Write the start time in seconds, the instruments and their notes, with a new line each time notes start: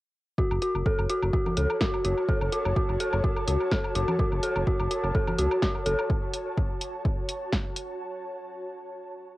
0.38 synth bell F#4, ambient pad F#4, kick
0.51 analog synth bass F#1, low woodblock
0.57 ambient pad C#5
0.62 synth bell F#4, closed hi-hat
0.75 analog synth bass F#1, low woodblock
0.86 synth bell A4, kick
0.99 analog synth bass F#1, low woodblock
1.05 ambient pad A5
1.10 synth bell F#4, closed hi-hat
1.22 analog synth bass F#1, low woodblock
1.33 synth bell F#4, kick
1.46 low conga, low woodblock
1.57 analog synth bass C#2, synth bell A4, closed hi-hat
1.70 low woodblock
1.81 synth bell F#4, kick, snare
1.94 low woodblock
2.05 analog synth bass F#1, synth bell F#4, closed hi-hat
2.18 low woodblock
2.29 synth bell A4, kick
2.41 analog synth bass F#1, low woodblock
2.52 synth bell F#4, closed hi-hat
2.65 analog synth bass F#1, low woodblock
2.76 synth bell F#4, kick
2.89 analog synth bass F#1, low woodblock
3.00 synth bell A4, closed hi-hat
3.13 analog synth bass F#1, low woodblock
3.24 synth bell F#4, kick
3.37 low woodblock
3.48 analog synth bass C#2, synth bell F#4, closed hi-hat
3.61 low woodblock
3.72 synth bell A4, kick, snare
3.84 low woodblock
3.95 analog synth bass F#1, synth bell F#4, closed hi-hat
4.08 low conga, low woodblock
4.19 synth bell F#4, kick
4.32 analog synth bass F#1, low woodblock
4.43 synth bell A4, closed hi-hat
4.56 analog synth bass F#1, low woodblock
4.67 synth bell F#4, kick
4.79 analog synth bass F#1, low woodblock
4.91 synth bell F#4, closed hi-hat
5.03 analog synth bass F#1, low woodblock
5.14 synth bell A4, kick
5.27 low conga, low woodblock
5.38 analog synth bass C#2, synth bell F#4, closed hi-hat
5.51 low woodblock
5.62 synth bell F#4, kick, snare
5.75 low woodblock
5.86 analog synth bass F#1, synth bell A4, closed hi-hat
5.99 low woodblock
6.10 kick
6.33 closed hi-hat
6.57 kick
6.81 closed hi-hat
7.05 kick
7.29 closed hi-hat
7.52 kick, snare
7.76 closed hi-hat